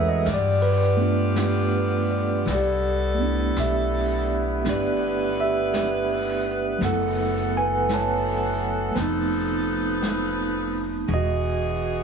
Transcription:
Already playing: upright bass E2, saxophone section E3 F#3 F#4 G#4, tine electric piano G#3 A3 C#4 E4 G#4 A4 A#4 B4 C#5 E5
0.08 tine electric piano D#5
0.25 upright bass G2, saxophone section D3 B3 F4 G4, brush sweep, snare
0.34 tine electric piano D5
0.62 tine electric piano B4
0.97 tine electric piano A3 B3 D4
1.02 tine electric piano F4
1.36 tine electric piano G4, brush sweep, snare, hi-hat pedal
1.74 tine electric piano B4
2.10 tine electric piano D5
2.45 upright bass C2, saxophone section D3 B3 E4 A4, brush sweep, snare
2.53 tine electric piano G4 D5
3.14 tine electric piano A3 B3
3.22 tine electric piano D4 E4
3.56 upright bass B1, tine electric piano E5, brush sweep, snare, hi-hat pedal
3.63 tine electric piano G4
4.64 upright bass G1, tine electric piano B3 D4, saxophone section B4, brush sweep, snare
4.69 tine electric piano G4 D5
5.40 tine electric piano G4 E5
5.74 brush sweep, snare, hi-hat pedal
6.78 upright bass F#1, saxophone section E3 F#4 A4, tine electric piano F#3 A3 B3, brush sweep, snare
6.83 tine electric piano E4 A4 F#5
7.57 tine electric piano B4 G#5
7.89 brush sweep, snare, hi-hat pedal
7.94 tine electric piano C#5 A5
8.91 saxophone section F3 B4, tine electric piano A3 B3
8.95 upright bass F1, tine electric piano C4, saxophone section D#4, brush sweep, snare
9.02 tine electric piano D#4
10.02 brush sweep, snare, hi-hat pedal
11.07 upright bass E1, saxophone section E3 F#4 G#4, brush sweep
11.14 tine electric piano F#4 D#5

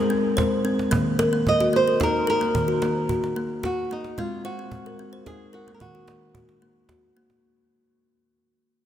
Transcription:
Already playing: kalimba G#3 A#4, nylon-string guitar G#4
0.10 kalimba C4
0.37 kalimba C5, cajon bass, cajon slap
0.65 kalimba C4
0.79 cajon slap
0.91 kalimba D#3 A#3, cajon bass
1.19 kalimba A#4, cajon slap
1.33 kalimba A#3
1.47 nylon-string guitar D#5, cajon bass
1.60 kalimba F#4, cajon slap
1.73 kalimba A#3, nylon-string guitar C5
1.88 kalimba A#4
2.00 kalimba D#4, nylon-string guitar A#4, cajon bass, cajon slap
2.27 kalimba A#4, nylon-string guitar A#4
2.41 kalimba A#3, cajon slap
2.55 kalimba D#3, cajon bass
2.68 kalimba F#4
2.82 kalimba A#3, cajon slap
3.09 kalimba F#4, cajon bass
3.24 cajon slap
3.36 kalimba A#3
3.63 kalimba F#4, nylon-string guitar F#4, cajon bass, cajon slap
3.91 kalimba A#3, nylon-string guitar D#4
4.04 cajon slap
4.18 kalimba G#3 C4, nylon-string guitar F4, cajon bass
4.45 nylon-string guitar F#4, kalimba C5
4.59 kalimba C4
4.71 cajon bass
4.86 kalimba A#4, cajon slap
4.99 kalimba C4
5.13 kalimba C5
5.26 kalimba D#4, nylon-string guitar G#4, cajon bass, cajon slap
5.53 nylon-string guitar F#4, kalimba A#4
5.67 kalimba A#3, cajon slap
5.74 nylon-string guitar A#4
5.80 kalimba D#3, nylon-string guitar F#4, cajon bass
5.95 kalimba F#4
6.08 kalimba A#3, cajon slap
6.22 cajon slap
6.35 kalimba F#4, cajon bass
6.49 cajon slap
6.62 kalimba A#3
6.76 cajon slap
6.89 kalimba F#4, cajon bass, cajon slap
7.17 kalimba A#3
7.30 cajon slap

